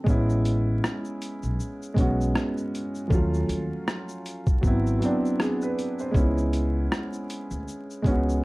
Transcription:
0.04 0.79 A1 loud
0.04 1.45 G#3 medium
0.04 1.46 B3 medium
0.04 kick loud
0.04 shaker medium
0.08 1.47 C#4 medium
0.08 1.48 E4 medium
0.30 shaker soft
0.45 closed hi-hat medium
0.45 shaker soft
0.84 cross-stick loud
0.84 shaker medium
1.05 shaker soft
1.22 closed hi-hat medium
1.22 shaker medium
1.43 1.57 B1 medium
1.43 shaker soft
1.60 shaker medium
1.82 shaker soft
1.94 2.31 B1 medium
1.94 3.00 G#3 medium
1.94 3.01 B3 medium
1.94 kick medium
1.94 closed hi-hat medium
1.94 shaker soft
1.98 3.02 C#4 medium
1.98 3.03 F#4 medium
2.21 shaker soft
2.36 cross-stick loud
2.36 shaker medium
2.58 shaker soft
2.75 closed hi-hat medium
2.75 shaker soft
2.95 shaker soft
3.08 3.45 D#2 loud
3.08 3.17 F3 medium
3.08 4.50 A3 medium
3.08 kick loud
3.12 4.52 F#3 medium
3.12 4.51 C#4 medium
3.12 4.52 F4 medium
3.12 shaker medium
3.34 shaker soft
3.49 3.69 D#2 medium
3.49 closed hi-hat medium
3.49 shaker soft
3.88 cross-stick loud
3.88 shaker medium
4.09 shaker medium
4.26 closed hi-hat medium
4.26 shaker medium
4.47 kick medium
4.47 shaker soft
4.61 4.98 G#1 loud
4.61 4.97 F#3 medium
4.61 4.98 B3 medium
4.61 kick medium
4.61 shaker medium
4.65 4.99 C4 medium
4.65 5.00 E4 loud
4.87 shaker soft
4.98 6.04 F#3 medium
4.98 6.05 B3 medium
4.98 closed hi-hat soft
4.98 shaker soft
5.03 6.06 C4 medium
5.03 6.08 D4 medium
5.25 shaker soft
5.39 5.60 G#4 medium
5.39 cross-stick loud
5.39 shaker medium
5.62 5.98 B4 medium
5.62 shaker soft
5.79 closed hi-hat medium
5.79 shaker soft
5.99 6.35 C5 medium
5.99 shaker soft
6.11 6.86 C#2 loud
6.11 7.53 G#3 medium
6.11 7.54 B3 medium
6.11 kick loud
6.15 7.55 C#4 medium
6.15 7.56 E4 medium
6.15 shaker medium
6.38 shaker soft
6.53 closed hi-hat medium
6.53 shaker soft
6.92 cross-stick loud
6.92 shaker medium
7.13 shaker soft
7.30 closed hi-hat medium
7.30 shaker medium
7.51 7.65 D2 medium
7.51 shaker medium
7.68 shaker medium
7.91 shaker soft
8.02 8.39 C#2 medium
8.02 8.44 G#3 medium
8.02 8.44 B3 medium
8.02 kick loud
8.02 closed hi-hat soft
8.02 shaker soft
8.07 8.44 C#4 medium
8.07 8.44 F#4 medium
8.29 shaker medium

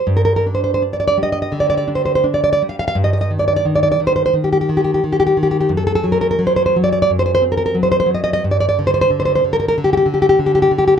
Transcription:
0.07 1.49 G2 medium
0.17 0.24 A#4 medium
0.25 0.34 A#4 medium
0.36 0.45 A#4 medium
0.46 0.81 D4 soft
0.55 0.63 C5 soft
0.64 0.72 C5 medium
0.74 0.82 C5 medium
0.82 1.86 D4 soft
0.93 0.99 D5 medium
1.00 1.06 D5 medium
1.08 1.16 D5 medium
1.17 2.26 G3 soft
1.23 1.31 D#5 medium
1.32 1.41 D#5 medium
1.42 1.52 D#5 medium
1.52 2.62 D3 soft
1.60 1.69 D5 medium
1.70 1.76 D5 medium
1.78 1.88 D5 medium
1.88 2.23 D4 soft
1.95 2.04 C5 soft
2.06 2.14 C5 medium
2.15 2.25 C5 medium
2.24 2.96 D4 soft
2.34 2.43 D5 medium
2.44 2.51 D5 medium
2.53 2.62 D5 medium
2.62 2.97 G3 soft
2.69 2.78 F5 medium
2.79 2.87 F5 medium
2.88 2.96 F5 medium
2.95 4.29 G2 medium
3.04 3.12 D#5 medium
3.13 3.20 D#5 medium
3.21 3.30 D#5 medium
3.30 3.64 D#3 soft
3.39 3.47 D5 medium
3.48 3.55 D5 medium
3.56 3.65 D5 medium
3.65 3.99 D#3 soft
3.76 3.82 D5 medium
3.83 3.90 D5 medium
3.92 4.00 D5 medium
4.00 4.32 D#3 soft
4.07 4.15 C5 medium
4.16 4.25 C5 medium
4.26 4.34 C5 medium
4.33 4.68 D#3 soft
4.44 4.51 G4 medium
4.53 4.60 G4 medium
4.61 4.69 G4 medium
4.69 5.02 D#3 soft
4.77 4.83 G4 soft
4.84 4.93 G4 medium
4.94 5.03 G4 medium
5.04 5.36 D#3 soft
5.13 5.19 G4 medium
5.20 5.25 G4 medium
5.27 5.36 G4 medium
5.37 5.72 D#3 soft
5.43 5.50 G4 soft
5.51 5.59 G4 medium
5.61 5.71 G4 medium
5.69 7.05 F#2 medium
5.77 5.86 A4 medium
5.87 5.94 A4 medium
5.95 6.05 A4 medium
6.04 6.38 F#3 soft
6.12 6.20 A#4 medium
6.21 6.30 A#4 medium
6.31 6.40 A#4 medium
6.39 6.75 F#3 soft
6.47 6.55 C5 medium
6.56 6.65 C5 medium
6.66 6.75 C5 medium
6.76 7.73 F#3 soft
6.84 6.91 D5 medium
6.93 7.01 D5 medium
7.02 7.10 D5 medium
7.10 8.39 F#2 soft
7.19 7.25 C5 medium
7.26 7.33 C5 medium
7.35 7.43 C5 medium
7.42 8.43 C4 soft
7.52 7.56 A#4 medium
7.57 7.65 A#4 medium
7.66 7.76 A#4 medium
7.75 8.05 F#3 soft
7.83 7.90 C5 medium
7.92 7.99 C5 medium
8.00 8.09 C5 medium
8.06 8.41 F#3 soft
8.15 8.23 D#5 medium
8.24 8.32 D#5 medium
8.33 8.43 D#5 medium
8.44 9.72 G2 medium
8.51 8.59 D5 medium
8.60 8.68 D5 medium
8.69 8.77 D5 medium
8.79 9.09 D3 soft
8.87 8.93 C5 medium
8.94 9.00 C5 medium
9.01 9.10 C5 medium
9.10 9.43 D3 soft
9.20 9.24 C5 medium
9.25 9.34 C5 medium
9.35 9.43 C5 medium
9.44 9.76 D3 medium
9.53 9.59 A#4 medium
9.60 9.67 A#4 medium
9.68 9.76 A#4 medium
9.78 10.05 D3 medium
9.84 9.92 G4 medium
9.93 9.96 G4 medium
9.97 10.06 G4 medium
10.06 10.38 D3 soft
10.14 10.21 G4 medium
10.22 10.28 G4 medium
10.29 10.38 G4 medium
10.39 10.70 D3 soft
10.46 10.54 G4 medium
10.55 10.61 G4 medium
10.62 10.71 G4 medium
10.71 10.99 D3 soft
10.78 10.86 G4 medium
10.88 10.97 G4 medium

